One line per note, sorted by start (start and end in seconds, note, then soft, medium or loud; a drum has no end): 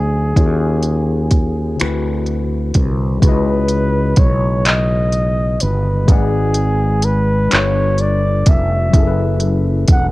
0.00 0.33 D2 medium
0.00 0.30 F#3 medium
0.00 0.36 A3 medium
0.00 0.32 C#4 medium
0.00 0.33 E4 medium
0.00 2.28 G#4 medium
0.00 0.35 G#5 medium
0.34 1.76 D#2 medium
0.34 1.78 D#3 medium
0.34 1.79 C#4 medium
0.34 1.80 F4 medium
0.34 kick medium
0.34 closed hi-hat medium
0.39 1.80 F#4 medium
0.39 1.81 G#4 medium
0.83 closed hi-hat soft
1.31 kick medium
1.31 closed hi-hat medium
1.77 3.21 D3 medium
1.77 3.22 C4 medium
1.77 3.22 E4 medium
1.77 closed hi-hat medium
1.81 2.72 D2 medium
1.81 3.23 F#4 medium
1.81 3.24 B4 medium
1.81 finger snap medium
2.26 closed hi-hat soft
2.74 3.19 C2 medium
2.74 kick medium
2.74 closed hi-hat medium
3.17 6.01 C#3 medium
3.17 6.03 G#3 medium
3.22 4.14 C#2 loud
3.22 3.29 D#4 soft
3.22 6.05 F#4 medium
3.22 4.20 B4 medium
3.22 kick loud
3.22 closed hi-hat medium
3.27 6.07 E4 medium
3.27 6.06 B4 medium
3.27 6.07 D#5 medium
3.68 closed hi-hat medium
4.16 5.57 B1 medium
4.16 4.68 C#5 medium
4.16 kick loud
4.16 closed hi-hat medium
4.65 5.63 D#5 loud
4.65 clap loud
4.65 closed hi-hat medium
5.12 closed hi-hat soft
5.60 6.05 G1 medium
5.60 6.11 B4 medium
5.60 closed hi-hat medium
6.06 7.47 G#1 loud
6.06 7.50 G#3 medium
6.06 7.51 G#4 medium
6.06 7.06 G#4 medium
6.06 7.51 B4 medium
6.06 kick loud
6.06 closed hi-hat medium
6.11 7.52 D5 medium
6.11 7.53 F#5 medium
6.54 closed hi-hat medium
7.02 7.54 B4 loud
7.02 closed hi-hat medium
7.49 8.93 G3 medium
7.49 8.93 D4 medium
7.49 8.94 F4 medium
7.49 8.02 C#5 loud
7.49 closed hi-hat medium
7.53 8.43 G1 medium
7.53 8.95 A4 medium
7.53 8.95 B4 medium
7.53 clap loud
7.98 8.50 D5 medium
7.98 closed hi-hat soft
8.46 8.90 F1 medium
8.46 9.63 E5 medium
8.46 kick medium
8.46 closed hi-hat medium
8.89 10.12 F#3 medium
8.89 10.12 C#4 medium
8.94 9.85 F#1 loud
8.94 10.12 E4 medium
8.94 10.12 G#4 medium
8.94 kick loud
8.94 closed hi-hat medium
8.98 10.12 A4 medium
8.98 9.04 A#4 medium
9.07 10.12 B4 medium
9.40 closed hi-hat medium
9.88 10.12 E1 medium
9.88 10.07 F#5 loud
9.88 kick loud
9.88 closed hi-hat medium